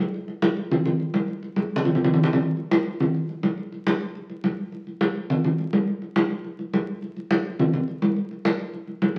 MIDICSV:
0, 0, Header, 1, 2, 480
1, 0, Start_track
1, 0, Tempo, 286670
1, 231, Time_signature, 4, 2, 24, 8
1, 15381, End_track
2, 0, Start_track
2, 0, Title_t, "Drums"
2, 0, Note_on_c, 9, 63, 73
2, 160, Note_off_c, 9, 63, 0
2, 240, Note_on_c, 9, 63, 32
2, 407, Note_off_c, 9, 63, 0
2, 469, Note_on_c, 9, 63, 38
2, 637, Note_off_c, 9, 63, 0
2, 708, Note_on_c, 9, 63, 89
2, 875, Note_off_c, 9, 63, 0
2, 950, Note_on_c, 9, 63, 35
2, 1117, Note_off_c, 9, 63, 0
2, 1195, Note_on_c, 9, 63, 36
2, 1195, Note_on_c, 9, 64, 82
2, 1362, Note_off_c, 9, 63, 0
2, 1362, Note_off_c, 9, 64, 0
2, 1431, Note_on_c, 9, 63, 34
2, 1431, Note_on_c, 9, 64, 74
2, 1598, Note_off_c, 9, 63, 0
2, 1598, Note_off_c, 9, 64, 0
2, 1669, Note_on_c, 9, 63, 35
2, 1836, Note_off_c, 9, 63, 0
2, 1906, Note_on_c, 9, 63, 83
2, 2073, Note_off_c, 9, 63, 0
2, 2145, Note_on_c, 9, 63, 33
2, 2312, Note_off_c, 9, 63, 0
2, 2388, Note_on_c, 9, 63, 35
2, 2556, Note_off_c, 9, 63, 0
2, 2617, Note_on_c, 9, 63, 75
2, 2785, Note_off_c, 9, 63, 0
2, 2948, Note_on_c, 9, 64, 77
2, 3103, Note_off_c, 9, 64, 0
2, 3103, Note_on_c, 9, 64, 75
2, 3266, Note_off_c, 9, 64, 0
2, 3266, Note_on_c, 9, 64, 74
2, 3422, Note_off_c, 9, 64, 0
2, 3422, Note_on_c, 9, 64, 102
2, 3578, Note_off_c, 9, 64, 0
2, 3578, Note_on_c, 9, 64, 78
2, 3742, Note_off_c, 9, 64, 0
2, 3742, Note_on_c, 9, 64, 85
2, 3903, Note_off_c, 9, 64, 0
2, 3903, Note_on_c, 9, 64, 100
2, 4060, Note_on_c, 9, 63, 32
2, 4070, Note_off_c, 9, 64, 0
2, 4227, Note_off_c, 9, 63, 0
2, 4305, Note_on_c, 9, 63, 35
2, 4473, Note_off_c, 9, 63, 0
2, 4545, Note_on_c, 9, 63, 87
2, 4712, Note_off_c, 9, 63, 0
2, 4784, Note_on_c, 9, 63, 32
2, 4952, Note_off_c, 9, 63, 0
2, 5029, Note_on_c, 9, 63, 32
2, 5029, Note_on_c, 9, 64, 78
2, 5196, Note_off_c, 9, 63, 0
2, 5196, Note_off_c, 9, 64, 0
2, 5267, Note_on_c, 9, 63, 33
2, 5434, Note_off_c, 9, 63, 0
2, 5511, Note_on_c, 9, 63, 34
2, 5679, Note_off_c, 9, 63, 0
2, 5748, Note_on_c, 9, 63, 78
2, 5915, Note_off_c, 9, 63, 0
2, 5989, Note_on_c, 9, 63, 30
2, 6156, Note_off_c, 9, 63, 0
2, 6234, Note_on_c, 9, 63, 33
2, 6401, Note_off_c, 9, 63, 0
2, 6473, Note_on_c, 9, 63, 88
2, 6640, Note_off_c, 9, 63, 0
2, 6708, Note_on_c, 9, 63, 33
2, 6876, Note_off_c, 9, 63, 0
2, 6954, Note_on_c, 9, 63, 34
2, 7121, Note_off_c, 9, 63, 0
2, 7194, Note_on_c, 9, 63, 33
2, 7361, Note_off_c, 9, 63, 0
2, 7432, Note_on_c, 9, 63, 82
2, 7599, Note_off_c, 9, 63, 0
2, 7909, Note_on_c, 9, 63, 31
2, 8077, Note_off_c, 9, 63, 0
2, 8153, Note_on_c, 9, 63, 33
2, 8321, Note_off_c, 9, 63, 0
2, 8387, Note_on_c, 9, 63, 84
2, 8554, Note_off_c, 9, 63, 0
2, 8629, Note_on_c, 9, 63, 32
2, 8797, Note_off_c, 9, 63, 0
2, 8874, Note_on_c, 9, 63, 34
2, 8874, Note_on_c, 9, 64, 83
2, 9041, Note_off_c, 9, 63, 0
2, 9041, Note_off_c, 9, 64, 0
2, 9116, Note_on_c, 9, 63, 34
2, 9116, Note_on_c, 9, 64, 69
2, 9283, Note_off_c, 9, 63, 0
2, 9283, Note_off_c, 9, 64, 0
2, 9357, Note_on_c, 9, 63, 35
2, 9525, Note_off_c, 9, 63, 0
2, 9595, Note_on_c, 9, 63, 83
2, 9762, Note_off_c, 9, 63, 0
2, 9837, Note_on_c, 9, 63, 31
2, 10005, Note_off_c, 9, 63, 0
2, 10075, Note_on_c, 9, 63, 35
2, 10243, Note_off_c, 9, 63, 0
2, 10312, Note_on_c, 9, 63, 91
2, 10480, Note_off_c, 9, 63, 0
2, 10554, Note_on_c, 9, 63, 31
2, 10721, Note_off_c, 9, 63, 0
2, 10790, Note_on_c, 9, 63, 33
2, 10958, Note_off_c, 9, 63, 0
2, 11035, Note_on_c, 9, 63, 35
2, 11202, Note_off_c, 9, 63, 0
2, 11276, Note_on_c, 9, 63, 84
2, 11444, Note_off_c, 9, 63, 0
2, 11758, Note_on_c, 9, 63, 33
2, 11926, Note_off_c, 9, 63, 0
2, 11998, Note_on_c, 9, 63, 35
2, 12165, Note_off_c, 9, 63, 0
2, 12233, Note_on_c, 9, 63, 94
2, 12401, Note_off_c, 9, 63, 0
2, 12479, Note_on_c, 9, 63, 33
2, 12647, Note_off_c, 9, 63, 0
2, 12716, Note_on_c, 9, 63, 35
2, 12716, Note_on_c, 9, 64, 82
2, 12883, Note_off_c, 9, 63, 0
2, 12883, Note_off_c, 9, 64, 0
2, 12951, Note_on_c, 9, 63, 35
2, 12951, Note_on_c, 9, 64, 68
2, 13119, Note_off_c, 9, 63, 0
2, 13119, Note_off_c, 9, 64, 0
2, 13189, Note_on_c, 9, 63, 37
2, 13357, Note_off_c, 9, 63, 0
2, 13431, Note_on_c, 9, 63, 85
2, 13598, Note_off_c, 9, 63, 0
2, 13672, Note_on_c, 9, 63, 33
2, 13839, Note_off_c, 9, 63, 0
2, 13913, Note_on_c, 9, 63, 36
2, 14080, Note_off_c, 9, 63, 0
2, 14150, Note_on_c, 9, 63, 92
2, 14317, Note_off_c, 9, 63, 0
2, 14387, Note_on_c, 9, 63, 34
2, 14555, Note_off_c, 9, 63, 0
2, 14627, Note_on_c, 9, 63, 35
2, 14794, Note_off_c, 9, 63, 0
2, 14860, Note_on_c, 9, 63, 34
2, 15028, Note_off_c, 9, 63, 0
2, 15101, Note_on_c, 9, 63, 91
2, 15268, Note_off_c, 9, 63, 0
2, 15381, End_track
0, 0, End_of_file